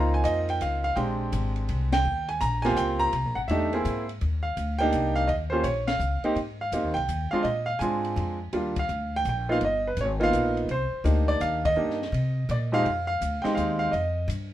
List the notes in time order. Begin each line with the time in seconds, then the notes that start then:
Already playing: C#2 A#3 C4 D#4 F4 A#5
0.14 G#5
0.24 F2 D#5, hi-hat pedal, ride
0.49 G5, ride
0.61 C#2 F5, hi-hat pedal, ride
0.84 F5, ride
0.96 A#1 G#3 C4 D4 G4 G5, ride
1.32 G#1, hi-hat pedal, ride
1.56 ride
1.69 C2, ride
1.92 G5, snare, ride
2.05 D#2
2.29 G#5, ride
2.41 A#1 A#5, hi-hat pedal, ride
2.62 A#3 C4 F4 G4 G#5, snare, ride
2.76 C#2 G5, hi-hat pedal, ride
2.99 A#5, ride
3.13 C2, ride
3.25 A#1
3.35 G#1 F#5
3.48 E2 A3 D4 D#4 G4 E5, ride
3.73 A#3 C4 E4 G#4, ride
3.85 G#2, hi-hat pedal, ride
4.09 ride
4.21 D#2, ride
4.43 F5
4.57 D2, hi-hat pedal, ride
4.79 A#3 D4 D#4 G4 G5, ride
4.93 C2, hi-hat pedal, ride
5.16 F5, ride
5.27 D#2 D#5, ride
5.50 A#3 C#4 F4 G4 C5
5.63 A#1 C#5, hi-hat pedal, ride
5.87 F5, snare, ride
6.00 C#2, hi-hat pedal
6.23 A#3 C4 D#4 G4, muted upright bass stroke, ride
6.36 G#2, ride
6.61 F5
6.72 F2 A#3 C4 D#4 G4, hi-hat pedal, ride
6.84 D#2
6.94 C2 G5, ride
7.08 D#2, hi-hat pedal, ride
7.31 G#3 C4 D4 F4 F5, muted upright bass stroke
7.43 A#2 D#5, ride
7.66 F5
7.79 G#2 G#3 C4 D4 F4 G#5, hi-hat pedal, ride
8.05 ride
8.16 F2, ride
8.53 D#2 G3 A#3 D4 F4, ride
8.76 F5, kick, ride
8.89 D2, hi-hat pedal
9.16 G5
9.25 A#1 G5, hi-hat pedal, ride
9.49 A#3 B3 D#4 F4 F5
9.61 G1 D#5, ride
9.87 B4
9.97 G#1 C#5, hi-hat pedal, ride
10.20 A#3 B3 D#4 F4 F5, ride
10.33 A#1, hi-hat pedal, ride
10.57 ride
10.69 C2 C5, ride
10.92 muted upright bass stroke
11.04 D2 A#3 D4 D#4 G4, hi-hat pedal, ride
11.28 D5, ride
11.41 D#2 F5, hi-hat pedal, ride
11.65 D#5, kick, ride
11.76 G2 A#3 D4 D#4 G4
11.90 snare
12.02 snare
12.12 C3, ride
12.49 A#2 D5, hi-hat pedal, ride
12.72 F2 G#3 C4 D#4 G4 F5, ride
12.85 F2, ride
13.07 F5
13.21 D2, hi-hat pedal, ride
13.42 G#3 C4 D#4 G4 G5, muted upright bass stroke, snare, ride
13.55 D#2 F5, hi-hat pedal, ride
13.79 F5
13.92 F2 D#5, ride
14.28 G2, hi-hat pedal, ride